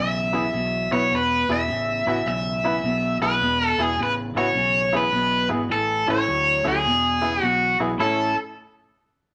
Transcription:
0.00 0.51 B1 medium
0.00 0.30 E2 medium
0.00 0.30 C#3 medium
0.00 0.92 E5 loud
0.33 0.51 E2 medium
0.33 0.51 C#3 medium
0.33 0.43 B3 medium
0.33 0.43 E4 medium
0.33 0.43 G#4 medium
0.53 0.89 B1 medium
0.53 0.87 E2 medium
0.53 0.87 B2 medium
0.91 1.10 B1 medium
0.91 1.09 E2 medium
0.91 1.09 B2 medium
0.91 1.01 B3 medium
0.91 1.01 E4 medium
0.91 1.02 B4 medium
0.91 1.12 C#5 medium
1.11 1.47 E1 medium
1.11 1.44 E2 medium
1.11 1.44 B2 medium
1.15 1.51 B4 medium
1.48 1.67 E1 medium
1.48 1.66 E2 medium
1.48 1.66 B2 medium
1.48 1.58 B3 medium
1.48 1.59 E4 medium
1.48 1.59 G#4 medium
1.48 2.27 E5 medium
1.68 2.03 A1 medium
1.68 2.01 E2 medium
1.68 2.02 C#3 medium
2.05 2.25 A1 medium
2.05 2.23 E2 medium
2.05 2.23 C#3 medium
2.05 2.16 B3 medium
2.05 2.16 E4 medium
2.05 2.17 F#4 medium
2.25 2.80 B1 medium
2.25 2.59 E2 medium
2.25 2.59 C#3 medium
2.25 3.17 E5 medium
2.64 2.81 E2 medium
2.64 2.81 C#3 medium
2.64 2.73 B3 medium
2.64 2.73 E4 medium
2.64 2.74 B4 medium
2.83 3.19 B1 medium
2.83 3.17 E2 medium
2.83 3.17 B2 medium
3.19 3.40 B1 medium
3.19 3.38 E2 medium
3.19 3.38 B2 medium
3.19 3.31 B3 medium
3.19 3.31 E4 medium
3.19 3.31 G#4 medium
3.19 3.67 B4 medium
3.40 3.76 E1 medium
3.40 3.74 E2 medium
3.40 3.74 B2 medium
3.67 3.80 A4 medium
3.78 3.96 E1 medium
3.78 3.95 E2 medium
3.78 3.96 B2 medium
3.78 3.88 B3 medium
3.78 3.88 E4 medium
3.78 3.88 G#4 medium
3.82 3.98 G#4 medium
3.97 4.33 A1 medium
3.97 4.31 E2 medium
3.97 4.31 C#3 medium
4.03 4.12 B4 medium
4.34 4.54 A1 medium
4.34 4.52 E2 medium
4.34 4.53 C#3 medium
4.34 4.45 B3 medium
4.34 4.46 E4 medium
4.34 4.46 F#4 medium
4.34 4.95 C#5 medium
4.54 5.10 B1 medium
4.54 4.88 E2 medium
4.54 4.89 C#3 medium
4.93 5.11 E2 medium
4.93 5.11 C#3 medium
4.93 5.02 B3 medium
4.93 5.02 E4 medium
4.93 5.03 G#4 medium
4.93 5.48 B4 medium
5.12 5.48 B1 medium
5.12 5.46 E2 medium
5.12 5.46 B2 medium
5.49 5.68 G#1 medium
5.49 5.67 E2 medium
5.49 5.68 B2 medium
5.49 5.59 B3 medium
5.49 5.59 E4 medium
5.49 5.60 G#4 medium
5.69 6.05 A1 medium
5.69 6.03 A2 medium
5.69 6.03 E3 medium
5.69 6.05 A4 medium
6.07 6.27 A1 medium
6.07 6.25 A2 medium
6.07 6.25 E3 medium
6.07 6.17 C#4 medium
6.07 6.17 E4 medium
6.07 6.17 A4 medium
6.07 6.68 C#5 loud
6.27 6.63 D2 medium
6.27 6.61 A2 medium
6.27 6.61 F#3 medium
6.64 6.84 D2 medium
6.64 6.82 A2 medium
6.64 6.83 F#3 medium
6.64 6.74 C#4 medium
6.64 6.74 E4 medium
6.64 6.74 A4 medium
6.68 7.43 G#4 medium
6.85 7.40 E1 medium
6.85 7.19 E2 medium
6.85 7.19 B2 medium
7.21 7.40 E2 medium
7.21 7.40 C#3 medium
7.21 7.32 B3 medium
7.21 7.32 E4 medium
7.21 7.32 G#4 medium
7.41 7.78 B1 medium
7.41 7.75 E2 medium
7.41 7.75 B2 medium
7.41 7.77 F#4 medium
7.80 7.99 B1 medium
7.80 7.98 E2 medium
7.80 7.98 B2 medium
7.80 7.90 B3 medium
7.80 7.90 E4 medium
7.80 7.90 G#4 medium
7.98 8.34 A1 medium
7.98 8.29 A2 medium
7.98 8.29 A3 medium
7.98 8.29 C#4 medium
7.98 8.35 C#4 medium
7.98 8.35 E4 medium
7.98 8.30 E4 medium
7.98 8.35 A4 medium

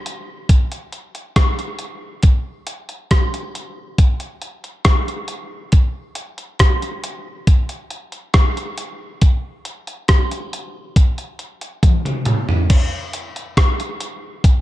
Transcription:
0.06 closed hi-hat medium
0.49 kick loud
0.49 closed hi-hat loud
0.72 closed hi-hat medium
0.92 closed hi-hat medium
1.15 closed hi-hat soft
1.36 kick loud
1.36 cross-stick loud
1.36 closed hi-hat medium
1.59 closed hi-hat soft
1.79 closed hi-hat medium
2.23 kick loud
2.23 closed hi-hat medium
2.67 closed hi-hat medium
2.89 closed hi-hat soft
3.11 kick loud
3.11 cross-stick loud
3.11 closed hi-hat medium
3.34 closed hi-hat medium
3.55 closed hi-hat medium
3.98 kick loud
3.98 closed hi-hat loud
4.20 closed hi-hat soft
4.42 closed hi-hat medium
4.64 closed hi-hat soft
4.85 kick loud
4.85 cross-stick loud
4.85 closed hi-hat medium
5.08 closed hi-hat soft
5.28 closed hi-hat medium
5.72 kick loud
5.72 closed hi-hat medium
6.15 closed hi-hat medium
6.38 closed hi-hat soft
6.59 kick loud
6.59 cross-stick loud
6.59 closed hi-hat medium
6.82 closed hi-hat soft
7.04 closed hi-hat medium
7.47 kick loud
7.47 closed hi-hat loud
7.69 closed hi-hat soft
7.90 closed hi-hat medium
8.12 closed hi-hat soft
8.34 kick loud
8.34 cross-stick medium
8.34 closed hi-hat medium
8.57 closed hi-hat soft
8.78 closed hi-hat medium
9.21 kick loud
9.21 closed hi-hat medium
9.65 closed hi-hat medium
9.87 closed hi-hat soft
10.08 kick loud
10.08 cross-stick loud
10.08 closed hi-hat medium
10.31 closed hi-hat medium
10.53 closed hi-hat medium
10.96 kick loud
10.96 closed hi-hat loud
11.18 closed hi-hat soft
11.39 closed hi-hat medium
11.61 closed hi-hat soft
11.83 kick loud
11.83 closed hi-hat medium
11.83 high tom medium
12.05 closed hi-hat soft
12.05 mid tom medium
12.25 closed hi-hat medium
12.25 mid tom medium
12.49 floor tom medium
12.70 kick loud
12.70 closed hi-hat medium
12.70 crash loud
13.13 closed hi-hat medium
13.36 closed hi-hat medium
13.57 kick loud
13.57 cross-stick loud
13.57 closed hi-hat medium
13.80 closed hi-hat medium
14.00 closed hi-hat medium
14.44 kick loud
14.44 closed hi-hat loud

